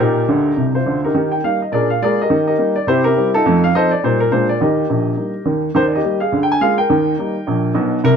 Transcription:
0.00 A#2 D#4 G4 A#4
0.28 D2 D3
0.56 C2 C3
0.75 F4 C5
0.86 D2 D3
1.04 D#4 G4 A#4
1.14 D#3 G4
1.31 G5
1.44 G3 A#3 D#4 F5
1.62 D#5
1.72 A#2 D4 G#4 A#4 D5
1.90 F5
2.02 G#3 A#3 F4 G#4 A#4 D5
2.21 G4 A#4 D#5
2.30 D#3 G4
2.47 G4 A#4 D#5
2.58 G3 A#3 D#4
2.76 D5
2.87 C3 E4 G4 C5
3.04 E4 G4 A#4
3.17 G3 C4 E4
3.34 D#4 F4 A4
3.46 F2 A3
3.64 F5
3.74 F3 C4 D#4 A4 C5 D#5
3.91 D5
4.03 A#2 G3 A#3 D#4 C5
4.20 A#4
4.31 A#2 G#3 A#3 D4 F4 C5
4.49 D5
4.61 D#2 D#3 G4 A#4 D#5
4.89 A#1 A#2
5.17 G3 A#3 D#4
5.45 D#2 D#3
5.75 D#2 D#3 C5
5.95 G4 D#5
6.03 G3 A#3 G4
6.20 G#4 F5
6.32 D2 D3
6.43 G5
6.52 G#5
6.61 G#3 A#3 F4 G#4 F5
6.78 A#4 G5
6.90 D#2 D#3
7.18 G3 A#3 D#4
7.47 A#1 A#2
7.74 B1 B2
8.04 C2 C3 A#4

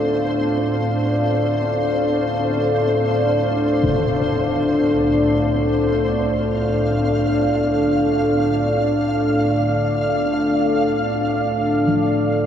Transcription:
Already playing: D2 A2 C4 D4 A4 C5 D5 F5
3.83 impact
4.94 C2
6.14 F5
11.87 F3

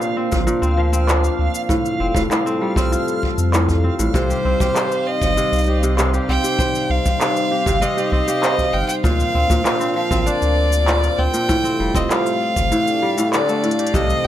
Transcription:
Already playing: A#2 A#3 C4 D4 F4 G4 C5 F5
0.02 shaker
0.17 C4
0.32 A1 A#2, kick, shaker
0.47 A#2, shaker
0.62 D2 C4, shaker
0.77 F3
0.93 C4, shaker
1.08 D4, clap, shaker
1.24 shaker
1.39 D2
1.55 shaker
1.69 A2 G3 C4 A4, kick, shaker
1.86 shaker
2.00 F1 C4
2.15 F1 A2, kick, shaker
2.31 A2, clap, shaker
2.46 C4, shaker
2.61 G3
2.76 C2 C4, kick, shaker
2.92 F4, shaker
3.08 shaker
3.23 kick
3.38 F2, shaker
3.53 A2, clap, shaker
3.69 kick, shaker
3.84 C4
3.99 A1 A2, shaker
4.14 C2 C3 D#4 C5, kick, shaker
4.30 G4, shaker
4.45 C2 C4
4.60 C2 G4, kick, shaker
4.76 C5, clap, shaker
4.92 shaker
5.07 D#5
5.22 G1, kick, shaker
5.37 C3, shaker
5.52 C2, shaker
5.56 shaker
5.58 shaker
5.61 shaker
5.66 G4, shaker
5.83 C3, shaker
5.98 C3, clap, shaker
6.14 G4, shaker
6.29 C2 C4 G5
6.44 G4, shaker
6.59 C5, kick, shaker
6.75 shaker
6.90 C2 F5
7.06 C2, kick, shaker
7.20 C3, clap, shaker
7.37 shaker
7.51 G4
7.66 G1 C3, kick, shaker
7.82 C3 D#5, shaker
7.97 G4, shaker
8.12 C2 C4 D#5, kick
8.28 G4, shaker
8.43 C5, clap, shaker
8.58 kick, shaker
8.73 G1 G5
8.88 G5, shaker
9.04 D2 A#2 A#3 D4 F4 F5, kick, shaker
9.20 shaker
9.35 D2 C4
9.50 D2 A#2, kick, shaker
9.65 A#2, clap, shaker
9.80 C4, shaker
9.96 F3 F5
10.11 A1 C4, kick, shaker
10.26 D4 D5, shaker
10.42 D2, shaker
10.73 shaker
10.88 A#2, clap, shaker
11.03 shaker
11.18 D2 C4 G5
11.34 A#2, shaker
11.49 A2 A3 F4 G4, kick, shaker
11.64 C4, shaker
11.80 F1 G3
11.95 F1 C4 D#5, kick, shaker
12.10 F4 F5, clap, shaker
12.26 shaker
12.56 G1, kick, shaker
12.71 A2 A3 D4 D5, shaker
12.87 shaker
13.02 G3
13.18 A2, shaker
13.33 D3 D5, clap, shaker
13.49 A3, shaker
13.64 A2, closed hi-hat
13.71 closed hi-hat
13.79 G4, closed hi-hat
13.87 closed hi-hat
13.94 C2 C3 G3 C4 D#4 C5 D#5, kick, shaker
14.10 shaker

